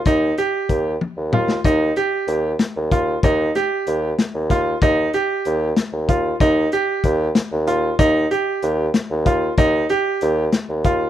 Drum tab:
HH |x-x-x-----|x-x-x-x-x-|x-x-x-x-x-|x-x-x-x-x-|
SD |---------o|------o---|--o---o-o-|------o---|
T1 |------o---|----------|----------|----------|
T2 |--------o-|----------|----------|----------|
BD |o---o-----|o-------o-|o-------o-|o-------o-|

HH |x-x-x-x-x-|x-x-x-x-x-|x-x-x-x-x-|
SD |------o---|------o---|------o---|
T1 |----------|----------|----------|
T2 |----------|----------|----------|
BD |o---o-----|o-------o-|o-------o-|